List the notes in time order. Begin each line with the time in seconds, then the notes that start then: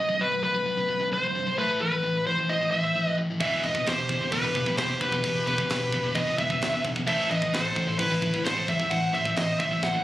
Already playing: D#5
0.09 B1 F#2
0.20 B1 F#2 B4
0.43 B1 F#2 B4
0.54 B1 F#2
0.66 B1 F#2
0.77 B1 F#2
0.88 B1 F#2
1.00 B1 F#2
1.12 B1 F#2 C5
1.23 B1 F#2
1.35 B1 F#2
1.47 B1 F#2
1.58 A2 E3 A3 B4
1.80 A2 E3 B4
1.92 A2 E3
2.03 A2 E3
2.26 A2 E3 C5
2.37 A2 E3
2.49 A2 E3 C5 D#5
2.61 A2 E3
2.71 A2 E3 C5 E5
2.84 A2 E3
2.95 A2 E3
3.03 D#5
3.07 A2 E3
3.18 A2 E3
3.30 A2 E3
3.40 E1 E2 B2 E3 B4 E5, kick, crash
3.63 E1 E2 B2 B4 D#5, crash
3.75 E2 B2, kick
3.86 E1 E2 B2 G4 C5, snare, crash
4.09 E1 E2 B2, kick, crash
4.21 E2 B2
4.32 E1 E2 B2 G4 B4, kick, crash
4.44 E2 B2
4.55 E1 E2 B2, kick, crash
4.66 E2 B2, kick
4.77 E1 E2 B2 G4 C5, snare, crash
4.90 E2 B2
5.01 B1 E2 B2 G4 B4, kick, crash
5.12 E2 B2, kick
5.24 E1 E2 B2, kick, crash
5.46 E1 E2 B2 G4 B4, crash
5.58 E2 B2, kick
5.69 E1 E2 B2, snare, crash
5.92 E1 E2 B2, kick, crash
6.04 E2 B2
6.15 E1 E2 B2 B4 D#5, kick, crash
6.27 E2 B2
6.38 E1 E2 B2 B4 E5, kick, crash
6.50 E2 B2, kick
6.61 E1 E2 B2, snare, crash
6.73 E2 B2
6.84 B1 E2 B2, kick, crash
6.96 E2 B2, kick
7.06 A1 A2 E3 A3 C5 E5, kick, crash
7.30 A1 A2 E3 B4 D#5, crash
7.42 A2 E3, kick
7.52 A1 A2 E3 A4 C5, snare, crash
7.75 A1 A2 E3, kick, crash
7.87 A2 E3
7.99 A1 A2 E3 E4 B4, kick, crash
8.10 A2 E3
8.21 A1 A2 E3, kick, crash
8.33 A2 E3, kick
8.44 A1 A2 E3 A4 C5, snare, crash
8.56 A2 E3
8.67 E2 A2 E3 C5 E5, kick, crash
8.79 A2 E3, kick
8.90 A1 A2 E3 C5 F#5, kick, crash
9.13 A1 A2 E3 C5 E5, crash
9.25 A2 E3, kick
9.36 A1 A2 E3 C5 D#5, snare, crash
9.60 A1 A2 E3 C5 E5, kick, crash
9.71 A2 E3
9.82 A1 A2 E3 C5 F#5, kick, snare
9.94 A2 E3